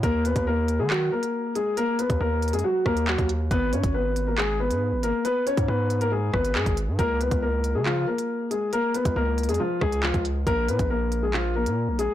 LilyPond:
<<
  \new Staff \with { instrumentName = "Upright piano" } { \time 4/4 \key ees \minor \tempo 4 = 138 <bes bes'>8 <ces' ces''>8 <bes bes'>8. <aes aes'>16 <ges ges'>8 <bes bes'>4 <aes aes'>8 | <bes bes'>8 <ces' ces''>8 <bes bes'>8. <aes aes'>16 <ges ges'>8 <bes bes'>8 <ges ges'>8 r8 | <ces' ces''>8 <des' des''>8 <ces' ces''>8. <bes bes'>16 <aes aes'>8 <ces' ces''>4 <bes bes'>8 | <ces' ces''>8 <des' des''>8 <ces' ces''>8. <bes bes'>16 <aes aes'>8 <ces' ces''>8 <aes aes'>8 r8 |
<bes bes'>8 <ces' ces''>8 <bes bes'>8. <aes aes'>16 <f f'>8 <bes bes'>4 <aes aes'>8 | <bes bes'>8 <ces' ces''>8 <bes bes'>8. <aes aes'>16 <f f'>8 <aes aes'>8 <f f'>8 r8 | <bes bes'>8 <ces' ces''>8 <bes bes'>8. <aes aes'>16 <f f'>8 <bes bes'>4 <aes aes'>8 | }
  \new Staff \with { instrumentName = "808-style bass" } { \clef bass \time 4/4 \key ees \minor ees,8. ees,4 ees8. r4. | r8. ees,16 ees,8. ges,16 r8 ees,8. ees,8. | aes,,8 aes,16 aes,,2 aes,8 aes,,8 r16 | r8. aes,16 aes,4. aes,,8 aes,16 aes,,8 aes,16 |
des,8. des,4 des8. r4. | r8. des,16 des,8. f,16 r8 des,8. des,8. | bes,,8 bes,16 bes,,2 bes,8 bes,,8 r16 | }
  \new DrumStaff \with { instrumentName = "Drums" } \drummode { \time 4/4 <hh bd>8 hh16 <hh bd>16 r8 hh8 hc8. hh16 r8 hh8 | hh8 hh16 <hh bd>16 r8 hh32 hh32 hh32 hh32 r8 <bd ss>16 hh16 hc16 <hh bd>16 hh8 | <hh bd>8 hh16 <hh bd>16 r8 hh8 hc8. hh16 r8 hh8 | hh8 hh16 <hh bd>16 r8 hh16 hh16 r8 <bd ss>16 hh16 hc16 <hh bd>16 hh8 |
<hh bd>8 hh16 <hh bd>16 r8 hh8 hc8. hh16 r8 hh8 | hh8 hh16 <hh bd>16 r8 hh32 hh32 hh32 hh32 r8 <bd ss>16 hh16 hc16 <hh bd>16 hh8 | <hh bd>8 hh16 <hh bd>16 r8 hh8 hc8. hh16 r8 hh8 | }
>>